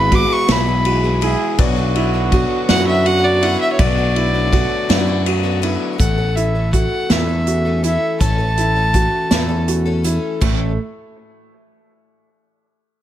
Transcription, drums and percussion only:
0.12 kick medium
0.12 ride medium
0.49 snare loud
0.49 ride medium
0.85 ride medium
1.22 ride medium
1.58 kick loud
1.58 ride medium
1.96 ride medium
2.32 kick medium
2.32 ride medium
2.69 snare loud
2.69 ride medium
3.06 ride medium
3.43 ride medium
3.79 kick loud
3.79 ride medium
4.16 ride medium
4.53 kick medium
4.53 ride medium
4.90 snare loud
4.90 ride medium
5.26 ride medium
5.63 ride medium
6.00 kick medium
6.00 closed hi-hat medium
6.37 closed hi-hat medium
6.73 kick medium
6.73 closed hi-hat medium
7.10 snare medium
7.10 closed hi-hat medium
7.47 closed hi-hat medium
7.84 closed hi-hat medium
8.21 kick medium
8.21 closed hi-hat medium
8.57 closed hi-hat medium
8.94 kick medium
8.94 closed hi-hat medium
9.31 snare medium
9.31 closed hi-hat medium
9.68 closed hi-hat medium
10.04 closed hi-hat medium
10.41 kick medium
10.41 crash medium

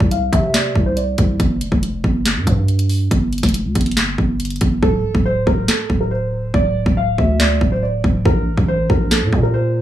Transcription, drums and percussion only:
0.00 kick medium
0.11 closed hi-hat medium
0.33 kick medium
0.33 closed hi-hat medium
0.54 snare loud
0.54 clap medium
0.54 closed hi-hat medium
0.75 kick medium
0.97 closed hi-hat medium
1.18 kick loud
1.18 closed hi-hat medium
1.40 kick loud
1.40 closed hi-hat medium
1.61 closed hi-hat medium
1.72 kick medium
1.83 closed hi-hat medium
2.04 kick medium
2.26 snare loud
2.26 clap medium
2.26 closed hi-hat medium
2.47 kick medium
2.47 closed hi-hat medium
2.68 closed hi-hat soft
2.79 closed hi-hat medium
2.89 open hi-hat medium
3.11 kick loud
3.11 closed hi-hat medium
3.33 closed hi-hat soft
3.38 closed hi-hat medium
3.43 kick loud
3.43 snare medium
3.43 closed hi-hat medium
3.49 closed hi-hat medium
3.54 closed hi-hat medium
3.75 kick medium
3.75 closed hi-hat medium
3.81 closed hi-hat medium
3.86 closed hi-hat medium
3.91 closed hi-hat soft
3.97 snare loud
3.97 clap medium
3.97 closed hi-hat medium
4.18 kick medium
4.40 closed hi-hat medium
4.45 closed hi-hat medium
4.50 closed hi-hat soft
4.56 closed hi-hat soft
4.61 kick loud
4.61 closed hi-hat medium
4.83 kick loud
5.15 kick medium
5.47 kick medium
5.68 snare loud
5.68 clap medium
5.90 kick medium
6.54 kick loud
6.86 kick loud
7.18 kick medium
7.40 snare loud
7.40 clap medium
7.61 kick medium
8.04 kick loud
8.25 kick loud
8.58 kick loud
8.90 kick medium
9.11 snare loud
9.11 clap medium
9.33 kick medium

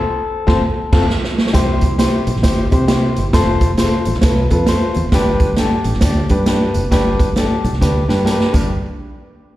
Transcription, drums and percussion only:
0.48 kick loud
0.48 snare loud
0.93 kick loud
0.93 snare loud
0.93 crash medium
1.10 snare loud
1.24 snare medium
1.38 snare loud
1.46 snare loud
1.54 kick loud
1.54 snare loud
1.54 closed hi-hat medium
1.54 tambourine medium
1.54 muted conga medium
1.81 kick loud
1.81 closed hi-hat medium
1.81 tambourine medium
1.81 muted conga medium
1.99 snare loud
1.99 closed hi-hat medium
1.99 tambourine loud
1.99 high conga medium
2.27 closed hi-hat medium
2.27 tambourine medium
2.36 snare soft
2.43 kick loud
2.43 snare loud
2.43 closed hi-hat loud
2.43 tambourine loud
2.43 muted conga soft
2.71 kick loud
2.71 closed hi-hat medium
2.71 tambourine medium
2.71 muted conga soft
2.88 snare loud
2.88 closed hi-hat loud
2.88 tambourine medium
2.88 high conga medium
3.02 high conga medium
3.16 closed hi-hat medium
3.16 tambourine medium
3.33 kick loud
3.33 snare loud
3.33 closed hi-hat medium
3.33 tambourine medium
3.33 muted conga medium
3.61 kick medium
3.61 closed hi-hat medium
3.61 tambourine medium
3.61 muted conga soft
3.77 snare loud
3.77 closed hi-hat medium
3.77 tambourine loud
3.77 high conga medium
4.05 closed hi-hat medium
4.05 tambourine medium
4.05 low conga medium
4.14 snare soft
4.21 kick loud
4.21 snare loud
4.21 closed hi-hat loud
4.21 tambourine loud
4.21 muted conga soft
4.50 kick medium
4.50 closed hi-hat medium
4.50 tambourine medium
4.50 muted conga soft
4.66 snare loud
4.66 closed hi-hat loud
4.66 tambourine medium
4.66 high conga medium
4.82 high conga medium
4.94 closed hi-hat medium
4.94 tambourine medium
5.12 kick loud
5.12 snare loud
5.12 closed hi-hat medium
5.12 tambourine medium
5.12 muted conga medium
5.40 kick loud
5.40 closed hi-hat medium
5.40 tambourine medium
5.40 muted conga soft
5.56 snare loud
5.56 closed hi-hat medium
5.56 tambourine loud
5.56 high conga medium
5.84 closed hi-hat medium
5.84 tambourine medium
5.93 snare soft
6.01 kick loud
6.01 snare loud
6.01 closed hi-hat loud
6.01 tambourine loud
6.01 muted conga soft
6.29 kick loud
6.29 closed hi-hat medium
6.29 tambourine medium
6.46 snare loud
6.46 closed hi-hat loud
6.46 tambourine medium
6.46 high conga medium
6.61 high conga medium
6.74 closed hi-hat medium
6.74 tambourine medium
6.92 kick loud
6.92 snare loud
6.92 closed hi-hat medium
6.92 tambourine medium
6.92 muted conga medium
7.20 kick loud
7.20 closed hi-hat medium
7.20 tambourine medium
7.20 muted conga soft
7.36 snare loud
7.36 closed hi-hat medium
7.36 tambourine loud
7.36 high conga medium
7.64 closed hi-hat medium
7.64 tambourine soft
7.64 low conga medium
7.73 snare soft
7.81 kick medium
7.81 snare medium
7.81 tambourine loud
7.81 muted conga soft
8.09 snare medium
8.09 tambourine medium
8.26 snare medium
8.26 tambourine medium
8.26 high conga medium
8.40 snare medium
8.40 high conga medium
8.54 kick loud
8.54 crash medium
8.54 tambourine medium
8.54 muted conga medium

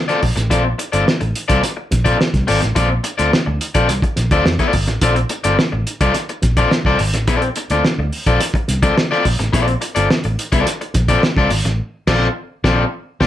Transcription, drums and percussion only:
0.09 snare soft
0.09 closed hi-hat soft
0.23 kick medium
0.23 open hi-hat medium
0.37 snare soft
0.37 closed hi-hat soft
0.51 kick loud
0.51 closed hi-hat medium
0.79 closed hi-hat medium
0.93 closed hi-hat medium
1.08 snare loud
1.21 closed hi-hat soft
1.36 closed hi-hat medium
1.49 kick loud
1.49 closed hi-hat medium
1.63 snare soft
1.63 closed hi-hat medium
1.91 kick medium
1.91 snare soft
1.91 closed hi-hat medium
2.06 kick medium
2.06 closed hi-hat soft
2.21 snare loud
2.34 kick medium
2.34 snare soft
2.34 closed hi-hat soft
2.48 open hi-hat medium
2.62 snare soft
2.62 closed hi-hat soft
2.76 kick loud
2.76 closed hi-hat medium
3.04 closed hi-hat medium
3.19 closed hi-hat medium
3.33 snare loud
3.61 closed hi-hat medium
3.75 kick medium
3.75 closed hi-hat medium
3.89 snare soft
3.89 closed hi-hat medium
4.02 kick medium
4.02 closed hi-hat soft
4.16 snare soft
4.16 closed hi-hat medium
4.31 kick medium
4.31 closed hi-hat soft
4.46 snare loud
4.59 kick medium
4.59 snare soft
4.59 closed hi-hat soft
4.73 kick medium
4.73 open hi-hat medium
4.87 snare soft
4.87 closed hi-hat soft
5.01 kick loud
5.01 closed hi-hat medium
5.16 closed hi-hat soft
5.29 closed hi-hat medium
5.44 closed hi-hat soft
5.59 snare loud
5.87 closed hi-hat medium
6.01 kick loud
6.01 closed hi-hat medium
6.14 snare soft
6.14 closed hi-hat medium
6.29 closed hi-hat soft
6.42 kick medium
6.42 snare soft
6.42 closed hi-hat medium
6.57 kick medium
6.57 closed hi-hat medium
6.71 snare loud
6.85 kick medium
6.85 snare soft
6.99 open hi-hat medium
7.14 snare soft
7.14 closed hi-hat soft
7.28 kick loud
7.28 closed hi-hat medium
7.42 closed hi-hat soft
7.56 closed hi-hat medium
7.70 closed hi-hat soft
7.85 snare loud
8.13 open hi-hat medium
8.27 kick medium
8.27 closed hi-hat medium
8.40 snare soft
8.40 closed hi-hat loud
8.54 kick medium
8.54 closed hi-hat soft
8.68 snare soft
8.68 closed hi-hat medium
8.83 kick loud
8.83 closed hi-hat medium
8.98 snare loud
9.12 snare soft
9.25 kick medium
9.25 open hi-hat medium
9.40 snare soft
9.40 closed hi-hat soft
9.53 kick loud
9.53 closed hi-hat medium
9.68 closed hi-hat soft
9.82 closed hi-hat medium
9.96 closed hi-hat medium
10.11 snare loud
10.24 closed hi-hat soft
10.39 closed hi-hat medium
10.52 kick loud
10.52 closed hi-hat medium
10.66 snare soft
10.66 closed hi-hat medium
10.81 closed hi-hat soft
10.94 kick loud
10.94 snare soft
10.94 closed hi-hat medium
11.08 kick loud
11.08 closed hi-hat soft
11.23 snare loud
11.37 kick loud
11.37 snare soft
11.50 open hi-hat medium
11.66 snare soft
11.66 closed hi-hat soft
12.07 kick loud
12.07 snare medium
12.07 crash medium
12.64 kick loud
12.64 snare medium
13.21 kick loud
13.21 snare loud

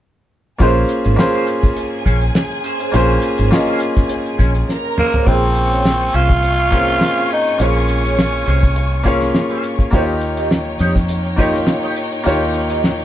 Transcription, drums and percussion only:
0.60 kick medium
0.60 closed hi-hat medium
0.89 closed hi-hat medium
1.05 closed hi-hat soft
1.19 snare medium
1.34 closed hi-hat soft
1.47 closed hi-hat medium
1.63 kick medium
1.63 closed hi-hat medium
1.76 closed hi-hat medium
2.06 kick medium
2.06 closed hi-hat medium
2.21 closed hi-hat soft
2.35 snare medium
2.51 closed hi-hat soft
2.64 closed hi-hat medium
2.81 closed hi-hat soft
2.94 closed hi-hat medium
3.22 closed hi-hat medium
3.38 closed hi-hat soft
3.52 snare medium
3.67 closed hi-hat soft
3.80 closed hi-hat medium
3.97 kick medium
3.97 snare soft
3.97 closed hi-hat soft
4.09 closed hi-hat medium
4.26 closed hi-hat soft
4.39 kick medium
4.39 closed hi-hat medium
4.55 closed hi-hat soft
4.69 snare soft
4.98 mid tom medium
5.14 floor tom medium
5.27 kick medium
5.27 closed hi-hat medium
5.55 closed hi-hat medium
5.72 closed hi-hat soft
5.85 snare loud
6.01 closed hi-hat soft
6.13 closed hi-hat medium
6.30 kick medium
6.30 snare soft
6.30 closed hi-hat soft
6.43 closed hi-hat medium
6.72 kick medium
6.72 closed hi-hat medium
6.88 closed hi-hat soft
7.01 snare medium
7.17 closed hi-hat soft
7.30 closed hi-hat medium
7.47 closed hi-hat soft
7.60 closed hi-hat medium
7.76 closed hi-hat soft
7.88 closed hi-hat medium
8.05 closed hi-hat soft
8.19 snare medium
8.46 closed hi-hat medium
8.63 kick medium
8.63 closed hi-hat soft
8.76 closed hi-hat medium
9.05 kick medium
9.05 closed hi-hat medium
9.21 snare soft
9.21 closed hi-hat soft
9.35 snare medium
9.51 closed hi-hat soft
9.64 closed hi-hat medium
9.79 kick medium
9.79 closed hi-hat soft
9.93 kick medium
9.93 closed hi-hat medium
10.08 closed hi-hat soft
10.21 closed hi-hat medium
10.37 closed hi-hat soft
10.51 snare medium
10.79 closed hi-hat medium
10.96 kick medium
10.96 snare soft
10.96 closed hi-hat soft
11.08 closed hi-hat medium
11.25 closed hi-hat soft
11.38 kick medium
11.38 closed hi-hat medium
11.54 snare soft
11.54 closed hi-hat soft
11.67 snare medium
11.96 closed hi-hat medium
12.13 closed hi-hat soft
12.26 closed hi-hat medium
12.54 closed hi-hat medium
12.70 closed hi-hat soft
12.84 snare medium
12.99 closed hi-hat soft

